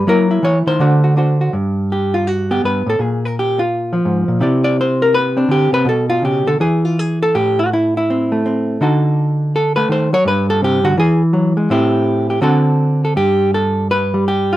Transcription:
0.07 F#3 A#3 E4 A#4
0.31 E4
0.43 E3 C#5
0.67 D#3 C5
0.79 D3 A3 D4 F#4
1.04 F#4
1.17 D4 F#4 C5
1.41 F#4
1.53 G2
1.92 G4
2.14 F4
2.27 F#4
2.51 B3 G4
2.64 G2 B4
2.86 A2 A4
2.99 A#2 G#4
3.25 A#4
3.39 G4
3.59 F4
3.93 F3
4.05 G#2
4.28 A#2
4.40 C3 E4 G4 D5
4.64 D5
4.81 C5
5.02 A#4
5.14 B4
5.37 C4 D4
5.48 D3 G4
5.72 C3 B4
5.85 B2 A4
6.10 F4
6.22 C#3 G4
6.47 D3 A4
6.60 E3 G#4
6.85 F4
6.99 G#4
7.23 A4
7.35 A2 G4
7.59 F#4
7.73 E4
7.97 E4
8.10 C4
8.32 A3
8.46 C4
8.81 D3 D#4 F#4 A4
9.56 A4
9.76 A3 B4
9.89 D#3 C5
10.13 F#3 C#5
10.25 G2 B4
10.50 A4
10.62 C3 G4
10.84 D3 F#4
10.97 E3 G#4
11.33 F#3
11.57 G#3
11.70 A2 C4 E4 G4
12.30 G4
12.42 D3 C4 F#4 A4
13.05 A4
13.16 G2 G4
13.54 A4
13.91 B4
14.14 G3
14.28 G4
14.53 F4

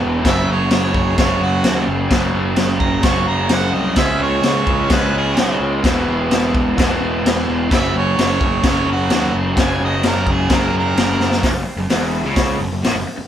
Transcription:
Already playing: E2 B2 E3
0.04 E1
0.21 F#2 C#3
0.25 F#1 F#3 E5, kick, snare, crash
0.48 F#1 C#5
0.71 F#1 C#5, snare, crash
0.94 F#1, kick
1.16 F#1 F#2 C#3 C#5, kick, snare, crash
1.21 F#3
1.41 F#1 F#4
1.63 D#2, snare, crash
1.87 F#1
2.08 F#1 F#2 C#3, kick, snare, crash
2.13 F#3
2.33 F#1
2.56 F#1, snare, crash
2.80 F#1 A#5, kick
3.02 F#1 F#2 C#3 C#6, kick, snare, crash
3.07 F#3
3.28 F#1 A#5
3.49 F#1 F#5, snare, crash
3.72 C2 D#5
3.95 C#2 C#3 G#3 E5, kick, snare, crash
4.00 C#4
4.20 C#2 C#5
4.42 C#2 C#5, snare, crash
4.67 C#2, kick
4.88 C#2 C#3 G#3, kick, snare, crash
4.92 C#4 B4
5.13 C#2
5.18 G#4
5.37 B1, snare, crash
5.59 C#2
5.82 E1 E2 B2, kick, snare, crash
5.87 E3
6.06 E1
6.31 E1, snare, crash
6.54 E1, kick
6.76 E1 E2 B2, kick, snare, crash
6.81 E3
7.01 E1
7.24 E1, snare, crash
7.48 E1
7.69 F#1 F#2 C#3, kick, snare, crash
7.74 F#3 E5
7.94 F#1 C#5
8.17 F#1 C#5, snare, crash
8.41 F#1, kick
8.63 F#1 F#2 C#3, kick, snare, crash
8.68 F#3 C#5
8.87 F#1
8.92 F#4
9.10 D#2, snare, crash
9.33 F#1
9.55 F#1 F#2 C#3, kick, snare, crash
9.60 F#3 G#5
9.81 F#1 D#5
10.03 F#1 A#4, snare, crash
10.26 F#1, kick
10.32 G#4
10.49 F#1 F#2 C#3, kick, snare, crash
10.53 F#3 A#4
10.72 F#1
10.78 A#4
10.96 F#1, snare, crash
11.18 F#1, snare
11.32 snare
11.43 F#1 F#2, kick, snare, open hi-hat
11.53 F#1 F#2
11.66 muted overdriven electric guitar stroke, muted picked electric bass stroke
11.77 F#1 F#2
11.89 E1 E2, snare, open hi-hat
12.24 C#2 C#3
12.36 kick, snare, open hi-hat
12.59 F#1 F#2
12.71 F#1 F#2
12.84 A1 A2, snare, open hi-hat
12.94 F#1 F#2
13.06 muted picked electric bass stroke, muted overdriven electric guitar stroke
13.18 muted overdriven electric guitar stroke, muted picked electric bass stroke

